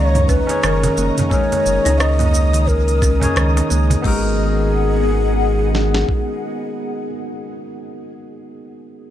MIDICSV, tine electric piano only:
0, 0, Header, 1, 2, 480
1, 0, Start_track
1, 0, Key_signature, 5, "minor"
1, 0, Tempo, 681818
1, 928, Time_signature, 4, 2, 24, 8
1, 6409, End_track
2, 0, Start_track
2, 0, Title_t, "Tine electric piano"
2, 0, Program_c, 0, 4
2, 0, Control_c, 0, 64, 127
2, 0, Note_on_c, 0, 61, 80
2, 0, Note_on_c, 0, 63, 71
2, 0, Note_on_c, 0, 68, 72
2, 0, Note_on_c, 0, 70, 86
2, 306, Note_off_c, 0, 61, 0
2, 311, Note_off_c, 0, 63, 0
2, 315, Note_off_c, 0, 68, 0
2, 320, Note_off_c, 0, 70, 0
2, 330, Note_on_c, 0, 61, 95
2, 340, Note_on_c, 0, 63, 81
2, 349, Note_on_c, 0, 68, 77
2, 358, Note_on_c, 0, 73, 100
2, 895, Note_off_c, 0, 61, 0
2, 900, Note_off_c, 0, 63, 0
2, 904, Note_off_c, 0, 68, 0
2, 909, Note_off_c, 0, 73, 0
2, 915, Note_on_c, 0, 61, 76
2, 923, Note_on_c, 0, 63, 74
2, 933, Note_on_c, 0, 68, 72
2, 941, Note_on_c, 0, 70, 86
2, 2227, Note_off_c, 0, 61, 0
2, 2231, Note_off_c, 0, 63, 0
2, 2236, Note_off_c, 0, 68, 0
2, 2241, Note_off_c, 0, 70, 0
2, 2253, Note_on_c, 0, 61, 88
2, 2263, Note_on_c, 0, 63, 80
2, 2271, Note_on_c, 0, 68, 81
2, 2279, Note_on_c, 0, 73, 98
2, 2816, Note_off_c, 0, 61, 0
2, 2821, Note_off_c, 0, 63, 0
2, 2825, Note_off_c, 0, 68, 0
2, 2827, Note_on_c, 0, 59, 90
2, 2829, Note_off_c, 0, 73, 0
2, 2842, Note_on_c, 0, 63, 83
2, 2856, Control_c, 0, 64, 0
2, 2857, Note_on_c, 0, 66, 81
2, 2869, Note_on_c, 0, 70, 102
2, 2975, Control_c, 0, 64, 127
2, 4975, Note_off_c, 0, 59, 0
2, 4990, Note_off_c, 0, 63, 0
2, 5004, Note_off_c, 0, 66, 0
2, 5017, Note_off_c, 0, 70, 0
2, 6409, End_track
0, 0, End_of_file